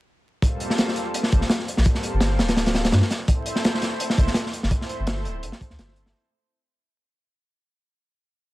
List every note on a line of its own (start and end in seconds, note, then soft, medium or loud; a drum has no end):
0.42 1.30 G3 medium
0.42 1.30 A#3 medium
0.42 1.30 C4 medium
0.42 1.30 F4 medium
0.42 1.30 A4 loud
0.42 kick loud
0.42 closed hi-hat medium
0.60 closed hi-hat medium
0.70 snare soft
0.78 snare loud
0.78 closed hi-hat medium
0.88 snare medium
0.96 closed hi-hat medium
1.14 closed hi-hat medium
1.23 snare soft
1.32 1.41 G1 loud
1.32 1.42 G3 medium
1.32 1.42 A#3 medium
1.32 1.42 C4 medium
1.32 1.42 F4 medium
1.32 1.42 A4 loud
1.32 kick medium
1.32 closed hi-hat medium
1.41 snare soft
1.50 snare loud
1.50 closed hi-hat medium
1.59 snare soft
1.68 closed hi-hat medium
1.77 1.85 A#1 loud
1.77 snare medium
1.85 2.73 G3 medium
1.85 2.73 A#3 medium
1.85 2.73 C4 medium
1.85 2.73 F4 medium
1.85 2.73 A4 loud
1.85 kick loud
1.85 closed hi-hat medium
1.95 snare soft
2.03 closed hi-hat medium
2.13 2.41 G1 loud
2.21 snare loud
2.21 closed hi-hat medium
2.39 2.92 D1 medium
2.39 snare loud
2.39 closed hi-hat medium
2.48 snare loud
2.48 closed hi-hat medium
2.57 snare loud
2.57 closed hi-hat medium
2.66 snare loud
2.66 closed hi-hat medium
2.75 2.85 G3 medium
2.75 2.85 A#3 medium
2.75 2.85 C4 medium
2.75 2.85 F4 medium
2.75 2.85 A4 loud
2.75 snare loud
2.75 closed hi-hat medium
2.85 snare loud
2.85 closed hi-hat medium
2.92 3.02 G2 loud
2.92 snare loud
2.92 closed hi-hat medium
3.02 snare soft
3.11 snare medium
3.11 closed hi-hat medium
3.28 4.16 A3 medium
3.28 4.16 C4 medium
3.28 4.16 E4 medium
3.28 4.16 A4 medium
3.28 4.16 C5 loud
3.28 kick loud
3.28 closed hi-hat medium
3.46 closed hi-hat medium
3.56 snare soft
3.64 snare loud
3.64 closed hi-hat medium
3.74 snare medium
3.82 snare medium
3.82 closed hi-hat medium
4.00 closed hi-hat medium
4.10 snare medium
4.18 4.27 G1 loud
4.18 4.27 A3 medium
4.18 4.27 C4 medium
4.18 4.27 E4 medium
4.18 4.28 A4 medium
4.18 4.27 C5 loud
4.18 kick loud
4.18 closed hi-hat medium
4.27 snare soft
4.34 snare loud
4.34 closed hi-hat loud
4.46 snare soft
4.53 closed hi-hat medium
4.63 4.71 G1 loud
4.63 snare medium
4.71 5.59 A3 medium
4.71 5.59 C4 medium
4.71 5.59 E4 medium
4.71 5.59 A4 medium
4.71 5.59 C5 loud
4.71 kick loud
4.71 closed hi-hat medium
4.81 snare soft
4.89 closed hi-hat medium
4.99 5.27 G1 loud
5.07 snare loud
5.07 closed hi-hat medium
5.25 5.45 D1 loud
5.25 closed hi-hat medium
5.43 5.52 G1 medium
5.43 closed hi-hat medium
5.52 snare medium
5.61 kick medium
5.61 closed hi-hat medium
5.70 5.78 D2 medium
5.70 6.12 A3 loud
5.70 6.12 C4 medium
5.70 6.12 E4 medium
5.70 6.12 A4 medium
5.70 6.12 C5 loud
5.70 snare soft
5.79 6.13 G1 loud
5.79 snare loud
5.79 closed hi-hat medium
5.88 snare soft
5.96 closed hi-hat medium
6.06 snare medium